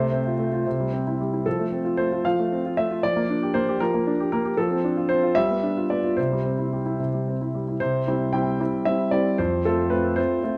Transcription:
0.00 0.64 C3 soft
0.00 0.20 A3 soft
0.00 1.19 C5 medium
0.12 0.33 C4 soft
0.27 0.48 F4 soft
0.39 0.60 A3 soft
0.52 0.66 F4 soft
0.67 1.44 C3 soft
0.80 1.01 G3 soft
0.93 1.14 C4 soft
1.07 1.28 E4 soft
1.21 1.41 G3 soft
1.33 1.46 E4 soft
1.46 2.24 F3 soft
1.46 1.98 A4 medium
1.59 1.80 A3 soft
1.72 1.93 C4 soft
1.85 2.06 F4 soft
1.97 2.19 A3 soft
1.97 2.24 C5 medium
2.12 2.33 F4 soft
2.25 3.01 F3 soft
2.25 2.77 F5 medium
2.39 2.60 A3 soft
2.52 2.73 C4 soft
2.66 2.86 F4 soft
2.77 2.98 A3 soft
2.77 3.03 E5 medium
2.91 3.03 F4 soft
3.03 3.80 F3 medium
3.03 3.55 D5 medium
3.16 3.37 A#3 soft
3.30 3.50 D4 soft
3.43 3.63 G4 soft
3.54 3.75 A#3 soft
3.54 3.80 C5 medium
3.69 3.89 G4 soft
3.80 4.56 F3 soft
3.80 4.31 A#4 medium
3.94 4.14 A#3 soft
4.07 4.27 D4 soft
4.20 4.40 G4 soft
4.32 4.53 A#3 soft
4.32 4.58 A#4 medium
4.45 4.58 G4 soft
4.57 5.34 F3 medium
4.57 5.10 A4 medium
4.71 4.92 C4 soft
4.84 5.05 D4 soft
4.97 5.18 F4 soft
5.09 5.31 C4 soft
5.09 5.36 C5 medium
5.23 5.36 F4 soft
5.35 6.15 G3 soft
5.35 5.90 E5 medium
5.50 5.72 B3 soft
5.63 5.85 D4 soft
5.77 5.99 F4 soft
5.90 6.12 B3 soft
5.90 6.17 D5 soft
6.04 6.18 F4 soft
6.17 6.98 C3 soft
6.17 7.54 C5 soft
6.32 6.54 G3 soft
6.46 6.67 C4 soft
6.59 6.80 E4 soft
6.73 6.94 G3 soft
6.86 7.08 E4 soft
6.99 7.79 C3 soft
7.14 7.35 G3 soft
7.28 7.49 C4 soft
7.41 7.63 E4 soft
7.54 7.76 G3 soft
7.68 7.81 E4 soft
7.80 8.07 C3 soft
7.80 8.33 C5 medium
8.07 8.31 G3 soft
8.07 8.31 C4 soft
8.07 8.31 E4 soft
8.33 8.57 G3 soft
8.33 8.58 C4 soft
8.33 8.58 E4 soft
8.33 8.86 G5 medium
8.60 8.84 G3 soft
8.60 8.84 C4 soft
8.60 8.84 E4 soft
8.85 9.10 G3 soft
8.85 9.11 C4 soft
8.85 9.11 E4 soft
8.85 9.13 E5 medium
9.11 9.36 G3 soft
9.11 9.36 C4 soft
9.11 9.37 E4 soft
9.11 9.39 D5 medium
9.38 9.65 F2 soft
9.38 9.65 C5 medium
9.65 9.89 A3 soft
9.65 9.90 C4 soft
9.65 9.90 F4 soft
9.65 9.92 A4 medium
9.90 10.15 A3 soft
9.90 10.15 C4 soft
9.90 10.16 F4 soft
9.90 10.17 B4 medium
10.16 10.41 A3 soft
10.16 10.41 C4 soft
10.16 10.42 F4 soft
10.16 10.58 C5 medium
10.43 10.58 A3 soft
10.43 10.58 C4 soft
10.43 10.58 F4 soft

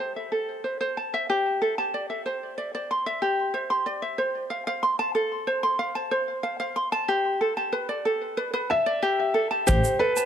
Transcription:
0.00 0.14 C5 medium
0.16 0.31 E5 soft
0.32 0.63 A4 medium
0.64 0.79 C5 medium
0.81 0.96 C5 medium
0.97 1.11 A5 medium
1.14 1.28 E5 medium
1.30 1.60 G4 medium
1.62 1.76 A4 medium
1.78 1.93 A5 medium
1.94 2.08 D5 medium
2.10 2.25 E5 medium
2.26 2.56 C5 medium
2.58 2.72 D5 medium
2.75 2.90 D5 medium
2.91 3.05 C6 medium
3.06 3.21 E5 medium
3.22 3.53 G4 medium
3.54 3.69 C5 medium
3.70 3.86 C6 medium
3.86 4.01 D5 medium
4.02 4.18 E5 medium
4.18 4.49 C5 medium
4.50 4.65 F5 medium
4.67 4.83 F5 medium
4.83 4.98 C6 medium
4.99 5.14 A5 medium
5.15 5.46 A4 medium
5.47 5.62 C5 medium
5.63 5.79 C6 medium
5.79 5.94 F5 medium
5.95 6.11 A5 medium
6.11 6.43 C5 medium
6.43 6.59 F5 medium
6.60 6.76 F5 medium
6.76 6.91 C6 medium
6.92 7.07 A5 medium
7.08 7.40 G4 medium
7.41 7.56 A4 medium
7.57 7.73 A5 medium
7.72 7.88 B4 medium
7.89 8.05 D5 medium
8.05 8.36 A4 medium
8.37 8.52 B4 medium
8.53 8.69 B4 medium
8.70 9.70 E5 loud
8.70 8.85 A5 medium
8.86 9.01 D5 medium
9.02 9.33 G4 medium
9.34 9.49 A4 medium
9.51 9.66 A5 medium
9.67 9.79 A1 medium
9.67 9.98 G4 medium
9.67 10.01 C5 loud
9.67 kick loud
9.67 shaker medium
9.84 shaker medium
9.99 10.14 A4 medium
9.99 10.25 B4 loud
10.17 10.25 A5 medium
10.17 shaker medium

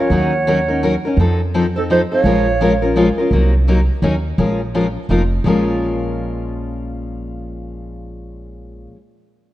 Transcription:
0.00 0.11 C#4 soft
0.00 0.11 F4 soft
0.00 0.10 A#4 medium
0.00 1.05 C#5 medium
0.00 0.13 F5 medium
0.10 0.96 D#2 medium
0.10 0.32 D#3 medium
0.10 0.32 F#3 medium
0.10 0.32 C#4 medium
0.10 0.32 D#4 medium
0.10 0.32 A#4 medium
0.10 1.04 F#5 medium
0.47 0.58 D#3 medium
0.47 0.58 F#3 medium
0.47 0.58 C#4 medium
0.47 0.58 D#4 medium
0.47 0.58 A#4 medium
0.68 0.82 C#4 soft
0.68 0.82 D#4 medium
0.68 0.81 A#4 medium
0.83 0.93 D#3 medium
0.83 0.93 F#3 medium
0.83 0.94 C#4 medium
0.83 0.94 D#4 medium
0.83 0.94 A#4 loud
1.05 1.19 C#4 soft
1.05 1.18 D#4 soft
1.05 1.18 A#4 medium
1.17 2.03 F2 medium
1.17 1.39 F3 medium
1.17 1.39 C4 medium
1.17 1.40 D#4 medium
1.17 1.40 A4 medium
1.54 1.65 F3 medium
1.54 1.65 C4 medium
1.54 1.65 D#4 medium
1.54 1.65 A4 medium
1.75 1.89 C4 soft
1.75 1.90 D#4 medium
1.75 1.89 A4 medium
1.75 1.83 A4 medium
1.75 1.81 C5 medium
1.90 2.00 F3 medium
1.90 2.01 C4 medium
1.90 2.01 D#4 medium
1.90 2.01 A4 medium
1.90 2.00 C5 medium
1.90 1.96 D#5 medium
2.12 2.25 C4 soft
2.12 2.25 D#4 medium
2.12 2.24 A4 medium
2.12 2.93 C#5 loud
2.12 2.92 F5 medium
2.24 3.10 A#1 medium
2.24 2.46 F3 medium
2.24 2.46 G#3 medium
2.24 2.46 C#4 medium
2.24 2.46 F4 medium
2.24 2.46 A#4 medium
2.61 2.71 F3 medium
2.61 2.72 G#3 medium
2.61 2.72 C#4 medium
2.61 2.72 F4 medium
2.61 2.72 A#4 medium
2.82 2.96 C#4 soft
2.82 2.96 F4 soft
2.82 2.95 A#4 medium
2.96 3.07 F3 medium
2.96 3.07 G#3 medium
2.96 3.07 C#4 medium
2.96 3.08 F4 medium
2.96 3.08 A#4 medium
3.18 3.32 C#4 soft
3.18 3.32 F4 soft
3.18 3.31 A#4 medium
3.31 3.88 C2 medium
3.31 3.53 C3 medium
3.31 3.53 F#3 medium
3.31 3.53 A#3 medium
3.31 3.53 D#4 medium
3.31 3.53 A#4 medium
3.68 3.78 C3 medium
3.68 3.79 F#3 medium
3.68 3.79 A#3 medium
3.68 3.79 D#4 medium
3.68 3.79 A#4 medium
4.02 4.31 D#2 medium
4.02 4.14 D#3 medium
4.02 4.14 F#3 medium
4.02 4.14 C#4 medium
4.02 4.14 D#4 medium
4.02 4.15 A#4 medium
4.38 4.96 A#1 medium
4.38 4.59 F3 medium
4.38 4.60 G#3 medium
4.38 4.59 C#4 medium
4.38 4.60 F4 medium
4.38 4.60 A#4 medium
4.74 4.85 F3 medium
4.74 4.86 G#3 medium
4.74 4.86 C#4 medium
4.74 4.86 F4 medium
4.74 4.86 A#4 medium
5.09 5.38 F1 medium
5.09 5.21 F3 medium
5.09 5.21 A#3 medium
5.09 5.21 D#4 medium
5.09 5.22 F4 medium
5.09 5.22 A#4 medium
5.44 8.86 A#1 medium
5.44 8.94 A#2 medium
5.44 8.95 F3 medium
5.44 8.96 G#3 medium
5.44 8.97 C#4 medium
5.44 8.97 F4 medium
5.44 8.98 A#4 medium

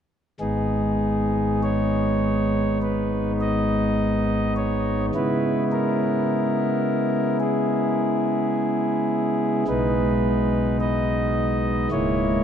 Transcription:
0.40 5.11 G#1 medium
0.40 5.11 G#2 medium
0.40 5.11 G#3 soft
0.40 5.11 B3 medium
0.40 5.11 D#4 soft
0.40 1.60 G#4 medium
1.63 2.79 C#5 loud
2.82 3.32 B4 medium
3.41 4.54 D#5 loud
4.56 5.06 C#5 medium
5.15 9.65 C#3 medium
5.15 9.64 G#3 medium
5.15 9.65 B3 medium
5.15 9.64 E4 medium
5.15 5.64 B4 loud
5.72 7.38 A#4 loud
7.40 9.64 G#4 medium
9.67 11.88 B1 medium
9.67 11.88 B2 medium
9.67 11.88 G#3 medium
9.67 11.88 B3 medium
9.67 11.88 D#4 medium
9.67 10.77 B4 loud
10.81 11.89 D#5 loud
11.91 12.44 C#1 medium
11.91 12.44 C#2 medium
11.91 12.44 G#3 soft
11.91 12.44 A#3 soft
11.91 12.44 E4 soft
11.91 12.44 C#5 medium

